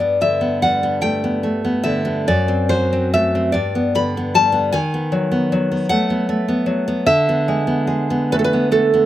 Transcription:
Already playing: G2 D5
0.00 B3
0.21 D3 E5
0.41 B3
0.62 G3 F#5
0.83 B3
1.01 A3 G5
1.24 B3
1.43 A3
1.65 B3
1.84 D3 E5
2.05 B3
2.28 F#2 D5
2.48 C4
2.69 F#3 C5
2.93 C4
3.14 A3 E5
3.35 C4
3.52 G2 D5
3.75 B3
3.95 D3 B5
4.17 B3
4.34 G3 A5
4.52 B3
4.73 D#3 G#5
4.94 B3
5.12 F#3
5.32 B3
5.52 F#3
5.72 B3
5.89 A3 F#5
6.10 B3
6.29 A3
6.48 B3
6.66 F#3
6.88 B3
7.06 D3 E5
7.29 B3
7.48 G#3
7.67 B3
7.87 G#3
8.10 B3
8.32 A3 B4
8.39 A4
8.44 B4
8.53 B3
8.71 A3 A4
8.94 B3

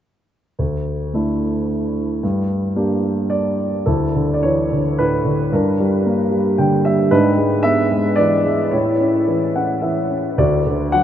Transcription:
0.59 D2
1.14 A3 D4 E4
2.23 G2
2.76 A#3 D4 G4
3.30 D5
3.86 D2 E4 A4
4.16 D3
4.34 D5
4.43 E3 C#5
4.72 D3
4.99 A2 B4
5.25 D3
5.52 G2 D4 A#4
5.80 G3
6.06 A#3
6.31 G3
6.58 D3 G5
6.85 G3 E5
7.11 G#2 D4 B4
7.37 G#3
7.63 B3 E5
7.90 G#3
8.16 E3 D5
8.45 G#3
8.71 A2 E4 C#5
9.00 C#4
9.27 E3
9.55 C#4 F#5
9.82 E3 E5
10.10 C#4
10.38 D2 F#4 D5
10.66 D3
10.92 F#3 F#5

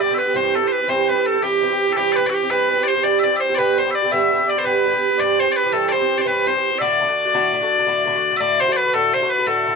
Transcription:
0.00 G2 D3 B3 G4 D5
0.09 D3 B3 G4
0.14 B4 E5
0.18 B4
0.26 D3 B3 G4
0.34 G2 E3 C4 G4 C5
0.54 G2 E3 C4 G4 A4
0.62 E3 C4 G4
0.67 B4 C5
0.72 B4
0.80 E3 C4 G4
0.88 G2 E3 C4 G4 C5
1.08 G2 E3 C4 G4 B4
1.16 E3 C4 G4
1.26 A4
1.33 E3 C4 G4
1.43 G2 E3 C4 G4
1.61 G2 E3 C4 G4
1.70 E3 C4 G4
1.87 E3 C4 G4
1.93 G2 G4 A4
1.97 E3 C4 G4
2.12 B4 D5
2.17 G2 E3 C4 G4
2.25 E3 C4 G4 D5
2.30 F#4 G4
2.34 G4
2.42 E3 C4 G4
2.50 G2 E3 C4 G4 B4
2.70 G2 E3 C4 G4 B4
2.78 E3 C4 G4
2.83 D5
2.88 C5
2.95 E3 C4 G4
3.04 G2 E3 C4 G4 D5
3.19 E5
3.23 G2 E3 C4 G4 D5
3.32 E3 C4 G4
3.36 C5 E5
3.49 E3 C4 G4
3.55 G2 D3 B3 B4 D5
3.59 G4
3.77 G2 D3 B3 G4 C5
3.86 D3 B3 G4
3.91 D5 E5
3.95 D5
4.02 D3 B3 G4
4.11 G2 D3 B3 G4 E5
4.31 G2 D3 B3 G4
4.40 D3 B3 G4
4.47 D5
4.56 D3 B3 G4 C5
4.64 G2 D3 B3 G4 B4
4.85 G2 D3 B3 G4
4.93 D3 B3 G4
5.10 D3 B3 G4
5.18 G2 E3 C4 G4 D5
5.38 G2 E3 C4 G4 C5
5.47 E3 C4 G4
5.52 D5
5.56 B4
5.64 E3 C4 G4
5.72 G2 E3 C4 G4 A4
5.89 G2 C5 D5
5.93 E3 C4 G4
6.00 E3 C4 G4
6.17 E3 C4 G4 D5
6.21 C5
6.25 G2 E3 C4 G4 B4
6.45 G2 E3 C4 G4 C5
6.54 E3 C4 G4
6.71 E3 C4 G4
6.78 A2 D3 A3 F#4 D5 E5
7.00 A2 D3 A3 F#4
7.08 D3 A3 F#4
7.25 D3 A3 F#4
7.33 A2 D3 A3 F#4
7.53 A2 D3 A3 F#4
7.62 D3 A3 F#4
7.78 D3 A3 F#4
7.87 A2 D3 A3 F#4
8.06 A2 D3 A3 F#4
8.15 D3 A3 F#4
8.31 D3 A3 F#4
8.37 A2 D3 A3 D5 E5
8.41 F#4
8.60 A2 D3 A3 F#4 C5
8.68 D3 A3 F#4
8.72 D5
8.76 B4
8.85 D3 A3 F#4
8.94 A2 D3 A3 F#4 A4
9.13 A2 D3 A3 F#4 C5
9.22 D3 A3 F#4
9.29 B4
9.38 D3 A3 F#4
9.46 A2 D3 A3 F#4 A4
9.66 A2 D3 A3 F#4

